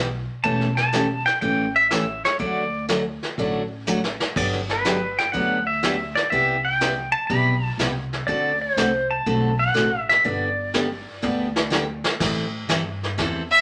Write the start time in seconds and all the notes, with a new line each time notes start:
Already playing: B1
0.44 E1 E3 A3 C#4 G4 A5, brush sweep, kick
0.61 snare
0.77 A5, snare
0.93 E3 A3 C#4 G4, snare, hi-hat pedal
1.26 G5, snare
1.41 A1 E3 A3 C#4 G4 G5, brush sweep, kick
1.76 E5
1.91 E3 A3 C#4 G4 E5, snare, hi-hat pedal
2.24 C#5, snare
2.39 D2 D3 F#3 A3 D4 F#4 D5, brush sweep, kick
2.89 D3 F#3 A3 D4 F#4, snare, hi-hat pedal
3.23 snare
3.38 A1 D3 F#3 A3 D4 F#4, brush sweep, kick
3.87 D3 F#3 A3 D4 F#4, hi-hat pedal
4.04 snare
4.20 snare
4.36 G1 D3 F#3 B3 D4 G4 D5, brush sweep, kick, crash
4.53 snare
4.69 B4, snare
4.85 D3 F#3 B3 D4 G4, snare, hi-hat pedal
5.19 G5, snare
5.32 D2 D3 F#3 B3 D4 G4 F#5, brush sweep, kick
5.67 E5
5.83 D3 F#3 B3 D4 G4, snare, hi-hat pedal
6.15 D5, snare
6.30 C2 C3 G3 B3 E4 G4 E5, brush sweep, kick
6.65 G5
6.81 C3 G3 B3 E4 G4, snare, hi-hat pedal
7.12 A5
7.27 B1 C3 G3 B3 E4 G4 B5, brush sweep, kick
7.78 C2 C3 G3 B3 E4 G4, snare, hi-hat pedal
8.13 snare
8.27 D2 D3 A3 C4 F#4 A4 D5, brush sweep, kick
8.61 C5
8.77 C2 D3 A3 C4 F#4 A4, snare, hi-hat pedal
9.11 A5
9.26 B1 D3 A3 C4 F#4 A4, brush sweep, kick
9.59 F#5
9.74 A1 D3 A3 C4 F#4 A4, snare, hi-hat pedal
10.09 E5, snare
10.24 G1 D3 G3 B3 D4 G4 D5, brush sweep, kick
10.74 D3 G3 B3 D4 G4, snare, hi-hat pedal
11.22 D2 D3 G3 B3 D4 G4, floor tom
11.56 snare
11.70 D3 G3 B3 D4 G4, snare, hi-hat pedal
12.04 snare
12.20 A2 E3 G3 C4 E4 A4, brush sweep, kick, snare, crash
12.69 G2 E3 G3 C4 E4 A4, kick, snare, hi-hat pedal
13.03 snare
13.18 E2 E3 G3 C4 E4 A4, brush sweep, kick, snare
13.51 E5